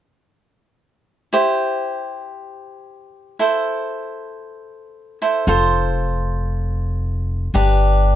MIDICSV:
0, 0, Header, 1, 3, 480
1, 0, Start_track
1, 0, Key_signature, 0, "major"
1, 0, Tempo, 519481
1, 1224, Time_signature, 4, 2, 24, 8
1, 7535, End_track
2, 0, Start_track
2, 0, Title_t, "Cavaquinho"
2, 0, Program_c, 0, 24
2, 1225, Note_on_c, 0, 64, 59
2, 1231, Note_on_c, 0, 67, 48
2, 1234, Note_on_c, 0, 72, 69
2, 3109, Note_off_c, 0, 64, 0
2, 3110, Note_off_c, 0, 67, 0
2, 3113, Note_off_c, 0, 72, 0
2, 3136, Note_on_c, 0, 64, 62
2, 3141, Note_on_c, 0, 69, 53
2, 3151, Note_on_c, 0, 72, 61
2, 4788, Note_off_c, 0, 64, 0
2, 4788, Note_off_c, 0, 69, 0
2, 4790, Note_off_c, 0, 72, 0
2, 4820, Note_on_c, 0, 64, 46
2, 4823, Note_on_c, 0, 69, 37
2, 4824, Note_on_c, 0, 72, 50
2, 5053, Note_off_c, 0, 69, 0
2, 5056, Note_off_c, 0, 64, 0
2, 5059, Note_off_c, 0, 72, 0
2, 5060, Note_on_c, 0, 65, 64
2, 5064, Note_on_c, 0, 69, 56
2, 5070, Note_on_c, 0, 72, 73
2, 6943, Note_off_c, 0, 65, 0
2, 6945, Note_off_c, 0, 69, 0
2, 6948, Note_off_c, 0, 72, 0
2, 6970, Note_on_c, 0, 67, 56
2, 6974, Note_on_c, 0, 62, 69
2, 6980, Note_on_c, 0, 71, 67
2, 7535, Note_off_c, 0, 62, 0
2, 7535, Note_off_c, 0, 67, 0
2, 7535, Note_off_c, 0, 71, 0
2, 7535, End_track
3, 0, Start_track
3, 0, Title_t, "Upright bass"
3, 0, Program_c, 1, 32
3, 5055, Note_on_c, 1, 29, 68
3, 6941, Note_off_c, 1, 29, 0
3, 6965, Note_on_c, 1, 31, 67
3, 7535, Note_off_c, 1, 31, 0
3, 7535, End_track
0, 0, End_of_file